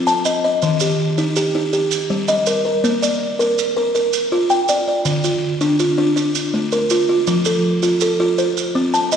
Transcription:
Already playing: C4
0.07 A5, maracas
0.25 D#5, maracas
0.44 D#5
0.62 D#3, maracas
0.80 G4, maracas
1.18 D#4, maracas
1.36 G4, maracas
1.55 D#4
1.73 G4, maracas
1.91 maracas
2.10 G3
2.28 D#5, maracas
2.46 A#4, maracas
2.65 A#4
2.84 A#3, maracas
3.02 D5, maracas
3.39 A#4, maracas
3.58 maracas
3.77 A#4
3.95 A#4, maracas
4.13 maracas
4.32 F4
4.50 G5, maracas
4.69 D5, maracas
4.88 D5
5.05 D3, maracas
5.24 F4, maracas
5.61 D4, maracas
5.79 F4, maracas
5.98 D4
6.16 D4, maracas
6.35 maracas
6.54 A3
6.72 A#4, maracas
6.90 F4, maracas
7.09 F4
7.27 F3, maracas
7.45 A4, maracas
7.83 F4, maracas
8.01 A4, maracas
8.20 F4
8.38 C5, maracas
8.57 maracas
8.75 C4
8.94 A5, maracas
9.12 D#5, maracas

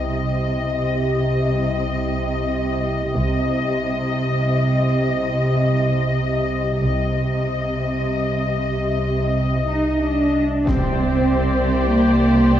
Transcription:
Already playing: C2 C3 D#5
3.14 C2 C3 D#5
6.83 C2 C3 D#5
9.70 D#4
10.03 D4
10.67 C2 C4 G4 C5 D5, impact
11.91 A#3
12.54 C4

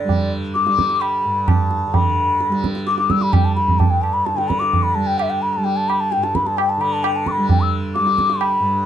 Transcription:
Already playing: G2 D3 G3 D5
0.04 G3
0.09 tabla tin, tabla ge
0.54 D6, tabla te
0.65 G3, tabla te
0.79 tabla ke
0.90 tabla te
1.01 B5, tabla na
1.25 G2
1.48 A5, tabla na, tabla ge
1.71 tabla te
1.87 D3
1.94 B5, tabla tin, tabla ge
2.40 tabla te
2.49 G3, tabla te
2.64 tabla ke
2.75 tabla te
2.87 D6, tabla te
2.98 D6, tabla te
3.10 G3 E6, tabla ke
3.21 B5, tabla te
3.33 G5, tabla na, tabla ge
3.45 A5
3.56 B5, tabla te
3.68 G2, tabla ge
3.79 A5, tabla tin, tabla ge
3.91 G5
4.02 A5, tabla na
4.13 B5
4.26 A5, tabla te
4.34 D3 G5, tabla te
4.48 B5, tabla ke
4.59 D6, tabla te
4.73 tabla tin, tabla ge
4.83 B5
4.95 G3 A5
5.07 G5
5.18 E5, tabla na
5.30 G5
5.42 B5
5.54 G3 A5
5.64 G5, tabla tin
5.77 A5
5.89 B5, tabla na
6.00 A5
6.12 G5, tabla te
6.17 G2
6.24 A5, tabla te
6.35 B5, tabla ke
6.46 A5, tabla te
6.58 G5, tabla na
6.69 A5
6.77 D3 B5, tabla na
6.93 A5
7.04 G5, tabla na
7.16 A5
7.26 D6, tabla ke
7.32 B5
7.38 G3
7.49 G5, tabla tin, tabla ge
7.61 E6
7.95 G3 D6, tabla te
8.07 tabla te
8.18 tabla ke
8.30 tabla te
8.40 B5, tabla na
8.60 G2

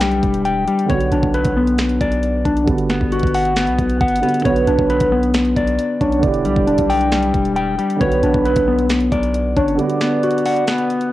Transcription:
Already playing: B1 D3 B3 D4 E4 G4 G5
0.01 G3, finger snap, snare, closed hi-hat
0.12 closed hi-hat
0.23 E1, kick, closed hi-hat
0.34 closed hi-hat
0.45 G5, closed hi-hat
0.68 G3, closed hi-hat
0.79 closed hi-hat
0.86 D3 B3
0.90 B1 C#5, kick, closed hi-hat
0.94 F#4
1.01 closed hi-hat
1.12 A#1 D4, closed hi-hat
1.23 B1, kick
1.34 B4, closed hi-hat
1.45 B1, kick, closed hi-hat
1.57 B3
1.67 closed hi-hat
1.78 finger snap, snare, closed hi-hat
1.89 closed hi-hat
2.01 B1 D5, kick, closed hi-hat
2.12 closed hi-hat
2.23 closed hi-hat
2.45 B1 D4, kick, closed hi-hat
2.57 closed hi-hat
2.64 G1 D3 G3, kick, closed hi-hat
2.69 B3 F#4
2.78 closed hi-hat
2.90 B3, finger snap, snare, closed hi-hat
3.01 G1, kick
3.12 F#4, closed hi-hat
3.19 G1, kick, closed hi-hat
3.27 closed hi-hat
3.34 F#5, open hi-hat
3.45 closed hi-hat
3.56 B3, finger snap, snare, closed hi-hat
3.67 B1, closed hi-hat
3.79 B1, kick, closed hi-hat
3.90 closed hi-hat
4.01 G1 F#5, kick, closed hi-hat
4.08 closed hi-hat
4.16 closed hi-hat
4.21 D3 G3 B3, closed hi-hat
4.25 F#4, closed hi-hat
4.34 closed hi-hat
4.40 D3, closed hi-hat
4.44 B1 B3 B4 C#5, kick, closed hi-hat
4.49 F#4
4.56 closed hi-hat
4.67 B1 D4, closed hi-hat
4.79 B1, kick
4.90 B4, closed hi-hat
5.00 B1, kick, closed hi-hat
5.12 B3
5.23 closed hi-hat
5.34 finger snap, snare, closed hi-hat
5.45 closed hi-hat
5.56 B1 D5, kick, closed hi-hat
5.67 closed hi-hat
5.79 closed hi-hat
6.01 B1 D4 C#5, kick, closed hi-hat
6.12 closed hi-hat
6.19 E1 D3 B3 D5, kick
6.23 E4, closed hi-hat
6.27 G4
6.34 closed hi-hat
6.45 B1 G3, closed hi-hat
6.56 E1, kick
6.67 D4, closed hi-hat
6.78 B1, kick, closed hi-hat
6.90 G5, open hi-hat
7.01 closed hi-hat
7.12 G3, finger snap, snare, closed hi-hat
7.23 closed hi-hat
7.34 E1, kick, closed hi-hat
7.45 closed hi-hat
7.56 G5, closed hi-hat
7.79 G3, closed hi-hat
7.90 closed hi-hat
7.97 D3 B3
8.01 B1 F#4 B4 C#5, kick, closed hi-hat
8.12 closed hi-hat
8.23 A#1 D4, closed hi-hat
8.34 B1, kick
8.45 B4, closed hi-hat
8.56 B1, kick, closed hi-hat
8.68 B3
8.79 closed hi-hat
8.90 finger snap, snare, closed hi-hat
9.01 closed hi-hat
9.12 B1 D5, kick, closed hi-hat
9.23 closed hi-hat
9.34 closed hi-hat
9.56 G1 D4 C#5, kick, closed hi-hat
9.68 closed hi-hat
9.75 D3 G3 D5, closed hi-hat
9.80 B3 F#4
9.90 closed hi-hat
10.01 B3, finger snap, snare, closed hi-hat
10.23 F#4, closed hi-hat
10.31 closed hi-hat
10.38 closed hi-hat
10.46 F#5, open hi-hat
10.56 closed hi-hat
10.67 B3, finger snap, snare, closed hi-hat
10.78 closed hi-hat
10.90 closed hi-hat
11.01 closed hi-hat

